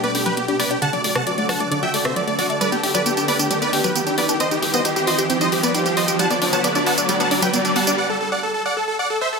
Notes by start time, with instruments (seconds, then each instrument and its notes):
Already playing: analog synth pad B2 G3 A3 D4 G4, riser
0.03 synth arpeggio sound B3, supersaw synth B4 D5, synth pluck D5, closed hi-hat
0.15 synth arpeggio sound D4, supersaw synth G4, synth pluck G4, open hi-hat
0.26 synth arpeggio sound F#3, supersaw synth G4 B4, synth pluck B4, closed hi-hat
0.37 synth arpeggio sound B3, supersaw synth G4, synth pluck G4, closed hi-hat
0.48 synth arpeggio sound D4, synth pluck G4, supersaw synth G4, closed hi-hat
0.59 synth arpeggio sound B3, supersaw synth B4 D5, synth pluck D5, open hi-hat
0.71 synth arpeggio sound D4, supersaw synth G4, synth pluck G4, closed hi-hat
0.82 synth arpeggio sound D3, analog synth pad D3 F#3 A3 F#4 A4, supersaw synth F#5 A5, synth pluck A5, closed hi-hat
0.93 synth arpeggio sound F#3, supersaw synth D5, synth pluck D5, closed hi-hat
1.04 synth arpeggio sound A3, supersaw synth D5, synth pluck D5, open hi-hat
1.15 synth arpeggio sound C3, supersaw synth F#5 A5, synth pluck A5, cross-stick, closed hi-hat
1.27 synth arpeggio sound F#3, supersaw synth D5, synth pluck D5, closed hi-hat
1.38 synth arpeggio sound A3, supersaw synth D5, synth pluck D5, closed hi-hat
1.49 synth arpeggio sound F#3, supersaw synth F#5 A5, synth pluck A5, cross-stick, open hi-hat
1.60 synth arpeggio sound A3, synth pluck D5, supersaw synth D5, closed hi-hat
1.71 synth arpeggio sound D3, synth pluck D5, supersaw synth D5, closed hi-hat
1.82 synth arpeggio sound F#3, supersaw synth E5 G5, synth pluck G5, closed hi-hat
1.94 synth arpeggio sound A3, synth pluck D5, supersaw synth D5, open hi-hat
2.05 synth arpeggio sound C3, supersaw synth C5 E5, synth pluck E5, cross-stick
2.16 synth arpeggio sound F#3, synth pluck D5, supersaw synth D5, closed hi-hat
2.27 synth arpeggio sound A3, synth pluck D5, supersaw synth D5, closed hi-hat
2.39 synth arpeggio sound F#3, supersaw synth F#4 D5, synth pluck D5, open hi-hat
2.50 synth arpeggio sound A3, supersaw synth D5, synth pluck D5, closed hi-hat
2.61 synth arpeggio sound G3, analog synth pad B3 G4, supersaw synth B4 D5, synth pluck D5, closed hi-hat, tambourine
2.72 synth arpeggio sound B3, synth pluck G4, supersaw synth G4, closed hi-hat, tambourine
2.83 synth arpeggio sound D4, synth pluck G4, supersaw synth G4, open hi-hat
2.94 synth arpeggio sound F#3, supersaw synth B4 D5, synth pluck D5, closed hi-hat, tambourine
3.06 synth arpeggio sound B3, synth pluck G4, supersaw synth G4, closed hi-hat, tambourine
3.17 synth arpeggio sound D4, synth pluck G4, supersaw synth G4, closed hi-hat, tambourine
3.28 synth arpeggio sound B3, supersaw synth B4 D5, synth pluck D5, open hi-hat
3.39 synth arpeggio sound D4, synth pluck G4, supersaw synth G4, closed hi-hat, tambourine
3.51 synth arpeggio sound G3, synth pluck G4, supersaw synth G4, closed hi-hat, tambourine
3.62 synth arpeggio sound B3, supersaw synth B4 D5, synth pluck D5, closed hi-hat, tambourine
3.73 synth arpeggio sound D4, synth pluck G4, supersaw synth G4, open hi-hat
3.84 synth arpeggio sound F#3, supersaw synth G4 B4, synth pluck B4, closed hi-hat, tambourine
3.95 synth arpeggio sound B3, synth pluck G4, supersaw synth G4, closed hi-hat, tambourine
4.06 synth arpeggio sound D4, synth pluck G4, supersaw synth G4, closed hi-hat, tambourine
4.18 synth arpeggio sound B3, supersaw synth B4 D5, synth pluck D5, open hi-hat
4.29 synth arpeggio sound D4, synth pluck G4, supersaw synth G4, closed hi-hat, tambourine
4.40 analog synth pad D#3 G3 C4 C5, synth arpeggio sound C4, supersaw synth C5 D#5, synth pluck D#5, closed hi-hat, tambourine
4.51 synth arpeggio sound D#4, synth pluck G4, supersaw synth G4, closed hi-hat, tambourine
4.62 synth pluck G4, synth arpeggio sound G4, supersaw synth G4, open hi-hat
4.74 synth arpeggio sound B3, supersaw synth C5 D#5, synth pluck D#5, closed hi-hat, tambourine
4.85 synth arpeggio sound D#4, synth pluck G4, supersaw synth G4, closed hi-hat, tambourine
4.96 synth pluck G4, synth arpeggio sound G4, supersaw synth G4, closed hi-hat, tambourine
5.07 synth arpeggio sound F#4, supersaw synth C5 D#5, synth pluck D#5, open hi-hat
5.18 synth arpeggio sound G4, supersaw synth G4, synth pluck G4, closed hi-hat, tambourine
5.30 synth arpeggio sound C4, supersaw synth G4, synth pluck G4, closed hi-hat, tambourine
5.41 synth arpeggio sound D#4, supersaw synth C5 D#5, synth pluck D#5, closed hi-hat, tambourine
5.52 synth arpeggio sound G4, supersaw synth G4, synth pluck G4, open hi-hat
5.63 synth arpeggio sound B3, supersaw synth B4 D5, synth pluck D5, closed hi-hat, tambourine
5.74 synth arpeggio sound D#4, supersaw synth G4, synth pluck G4, closed hi-hat, tambourine
5.86 synth arpeggio sound G4, synth pluck G4, supersaw synth G4, closed hi-hat, tambourine
5.97 synth arpeggio sound F#4, supersaw synth C5 D#5, synth pluck D#5, open hi-hat
6.08 synth arpeggio sound G4, supersaw synth G4, synth pluck G4, closed hi-hat, tambourine
6.19 analog synth pad D3 A3 B3 B4, synth arpeggio sound G3, supersaw synth F#5 A5, synth pluck A5, closed hi-hat, tambourine
6.30 synth arpeggio sound B3, supersaw synth D5, synth pluck D5, closed hi-hat, tambourine
6.42 synth arpeggio sound D4, supersaw synth D5, synth pluck D5, open hi-hat
6.53 synth arpeggio sound F#3, supersaw synth F#5 A5, synth pluck A5, closed hi-hat, tambourine
6.64 synth arpeggio sound B3, supersaw synth D5, synth pluck D5, closed hi-hat, tambourine
6.75 synth arpeggio sound D4, supersaw synth D5, synth pluck D5, closed hi-hat, tambourine
6.86 synth arpeggio sound B3, supersaw synth F#5 A5, synth pluck A5, open hi-hat
6.98 synth arpeggio sound D4, supersaw synth D5, synth pluck D5, closed hi-hat, tambourine
7.09 synth arpeggio sound G3, supersaw synth D5, synth pluck D5, closed hi-hat, tambourine
7.20 synth arpeggio sound B3, supersaw synth F#5 A5, synth pluck A5, closed hi-hat, tambourine
7.31 synth arpeggio sound D4, supersaw synth D5, synth pluck D5, open hi-hat
7.42 synth arpeggio sound F#3, supersaw synth B4 G5, synth pluck G5, closed hi-hat, tambourine
7.54 synth arpeggio sound B3, supersaw synth D5, synth pluck D5, closed hi-hat, tambourine
7.65 synth arpeggio sound D4, supersaw synth D5, synth pluck D5, closed hi-hat, tambourine
7.76 synth arpeggio sound B3, supersaw synth F#5 A5, synth pluck A5, open hi-hat
7.87 synth arpeggio sound D4, synth pluck D5, supersaw synth D5, closed hi-hat, tambourine
7.98 supersaw synth D5 F#5
8.10 supersaw synth A4
8.21 supersaw synth A4
8.32 supersaw synth D5 F#5
8.43 supersaw synth A4
8.54 supersaw synth A4
8.66 supersaw synth D5 F#5
8.77 supersaw synth A4
8.88 supersaw synth A4
8.99 supersaw synth D5 F#5
9.10 supersaw synth A4
9.21 supersaw synth C5 E5
9.33 supersaw synth A4